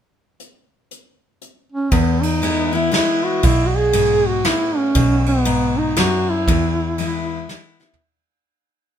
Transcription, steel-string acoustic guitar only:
0, 0, Header, 1, 2, 480
1, 0, Start_track
1, 0, Key_signature, 4, "major"
1, 0, Tempo, 506757
1, 377, Time_signature, 3, 2, 24, 8
1, 8512, End_track
2, 0, Start_track
2, 0, Title_t, "Steel-string acoustic guitar"
2, 0, Program_c, 0, 25
2, 1816, Note_on_c, 0, 40, 79
2, 2290, Note_on_c, 0, 52, 48
2, 2299, Note_on_c, 0, 56, 55
2, 2301, Note_on_c, 0, 59, 57
2, 2312, Note_on_c, 0, 64, 60
2, 2571, Note_off_c, 0, 64, 0
2, 2575, Note_off_c, 0, 52, 0
2, 2580, Note_off_c, 0, 56, 0
2, 2580, Note_off_c, 0, 59, 0
2, 2583, Note_on_c, 0, 64, 53
2, 2604, Note_on_c, 0, 59, 41
2, 2738, Note_off_c, 0, 40, 0
2, 2761, Note_on_c, 0, 52, 50
2, 2763, Note_off_c, 0, 59, 0
2, 2764, Note_off_c, 0, 64, 0
2, 2766, Note_on_c, 0, 56, 55
2, 2774, Note_on_c, 0, 59, 57
2, 2782, Note_on_c, 0, 64, 59
2, 3229, Note_off_c, 0, 52, 0
2, 3231, Note_off_c, 0, 56, 0
2, 3235, Note_off_c, 0, 59, 0
2, 3239, Note_off_c, 0, 64, 0
2, 3251, Note_on_c, 0, 47, 83
2, 3727, Note_on_c, 0, 44, 77
2, 4174, Note_off_c, 0, 47, 0
2, 4191, Note_off_c, 0, 44, 0
2, 4212, Note_on_c, 0, 45, 74
2, 4674, Note_off_c, 0, 45, 0
2, 4688, Note_on_c, 0, 47, 89
2, 5166, Note_on_c, 0, 44, 74
2, 5613, Note_off_c, 0, 47, 0
2, 5631, Note_off_c, 0, 44, 0
2, 5651, Note_on_c, 0, 42, 80
2, 6114, Note_off_c, 0, 42, 0
2, 6142, Note_on_c, 0, 40, 79
2, 6613, Note_on_c, 0, 52, 51
2, 6622, Note_on_c, 0, 56, 53
2, 6629, Note_on_c, 0, 59, 56
2, 6633, Note_on_c, 0, 64, 57
2, 7062, Note_off_c, 0, 40, 0
2, 7076, Note_off_c, 0, 52, 0
2, 7080, Note_off_c, 0, 56, 0
2, 7083, Note_off_c, 0, 59, 0
2, 7085, Note_off_c, 0, 64, 0
2, 7109, Note_on_c, 0, 56, 51
2, 7114, Note_on_c, 0, 59, 62
2, 7120, Note_on_c, 0, 64, 64
2, 7375, Note_off_c, 0, 64, 0
2, 7385, Note_off_c, 0, 56, 0
2, 7386, Note_on_c, 0, 64, 53
2, 7387, Note_off_c, 0, 59, 0
2, 7410, Note_on_c, 0, 59, 43
2, 7566, Note_off_c, 0, 64, 0
2, 7578, Note_off_c, 0, 59, 0
2, 8512, End_track
0, 0, End_of_file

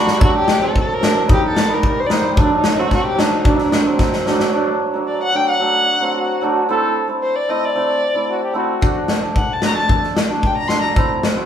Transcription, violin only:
0, 0, Header, 1, 2, 480
1, 0, Start_track
1, 0, Tempo, 537634
1, 187, Time_signature, 2, 2, 24, 8
1, 10227, End_track
2, 0, Start_track
2, 0, Title_t, "Violin"
2, 0, Program_c, 0, 40
2, 0, Note_on_c, 0, 66, 97
2, 198, Note_off_c, 0, 66, 0
2, 210, Note_on_c, 0, 66, 97
2, 312, Note_off_c, 0, 66, 0
2, 338, Note_on_c, 0, 67, 99
2, 579, Note_on_c, 0, 69, 84
2, 592, Note_off_c, 0, 67, 0
2, 685, Note_off_c, 0, 69, 0
2, 711, Note_on_c, 0, 69, 86
2, 839, Note_on_c, 0, 70, 104
2, 852, Note_off_c, 0, 69, 0
2, 1057, Note_off_c, 0, 70, 0
2, 1186, Note_on_c, 0, 67, 97
2, 1284, Note_off_c, 0, 67, 0
2, 1325, Note_on_c, 0, 69, 97
2, 1554, Note_on_c, 0, 70, 80
2, 1568, Note_off_c, 0, 69, 0
2, 1656, Note_off_c, 0, 70, 0
2, 1675, Note_on_c, 0, 70, 84
2, 1782, Note_on_c, 0, 72, 97
2, 1796, Note_off_c, 0, 70, 0
2, 1842, Note_on_c, 0, 74, 73
2, 1855, Note_off_c, 0, 72, 0
2, 1897, Note_on_c, 0, 72, 97
2, 1911, Note_off_c, 0, 74, 0
2, 2008, Note_off_c, 0, 72, 0
2, 2162, Note_on_c, 0, 62, 85
2, 2254, Note_off_c, 0, 62, 0
2, 2278, Note_on_c, 0, 63, 87
2, 2497, Note_on_c, 0, 66, 80
2, 2510, Note_off_c, 0, 63, 0
2, 2609, Note_off_c, 0, 66, 0
2, 2621, Note_on_c, 0, 66, 90
2, 2724, Note_off_c, 0, 66, 0
2, 2735, Note_on_c, 0, 67, 91
2, 2851, Note_on_c, 0, 63, 87
2, 2865, Note_off_c, 0, 67, 0
2, 3090, Note_on_c, 0, 62, 80
2, 3103, Note_off_c, 0, 63, 0
2, 3157, Note_on_c, 0, 63, 67
2, 3170, Note_off_c, 0, 62, 0
2, 3201, Note_on_c, 0, 62, 83
2, 3214, Note_off_c, 0, 63, 0
2, 3562, Note_off_c, 0, 62, 0
2, 4530, Note_on_c, 0, 74, 78
2, 4640, Note_off_c, 0, 74, 0
2, 4670, Note_on_c, 0, 78, 103
2, 4786, Note_on_c, 0, 79, 114
2, 4799, Note_off_c, 0, 78, 0
2, 4897, Note_off_c, 0, 79, 0
2, 4901, Note_on_c, 0, 78, 102
2, 5699, Note_off_c, 0, 78, 0
2, 6451, Note_on_c, 0, 72, 93
2, 6571, Note_on_c, 0, 74, 103
2, 6584, Note_off_c, 0, 72, 0
2, 6695, Note_on_c, 0, 75, 104
2, 6709, Note_off_c, 0, 74, 0
2, 6825, Note_on_c, 0, 74, 106
2, 6838, Note_off_c, 0, 75, 0
2, 7654, Note_off_c, 0, 74, 0
2, 8364, Note_on_c, 0, 78, 73
2, 8509, Note_on_c, 0, 81, 88
2, 8522, Note_off_c, 0, 78, 0
2, 8614, Note_off_c, 0, 81, 0
2, 8625, Note_on_c, 0, 82, 101
2, 8720, Note_off_c, 0, 82, 0
2, 8725, Note_on_c, 0, 81, 92
2, 8945, Note_off_c, 0, 81, 0
2, 9335, Note_on_c, 0, 79, 79
2, 9432, Note_off_c, 0, 79, 0
2, 9437, Note_on_c, 0, 82, 91
2, 9532, Note_on_c, 0, 84, 101
2, 9545, Note_off_c, 0, 82, 0
2, 9651, Note_off_c, 0, 84, 0
2, 9656, Note_on_c, 0, 82, 79
2, 9885, Note_off_c, 0, 82, 0
2, 10227, End_track
0, 0, End_of_file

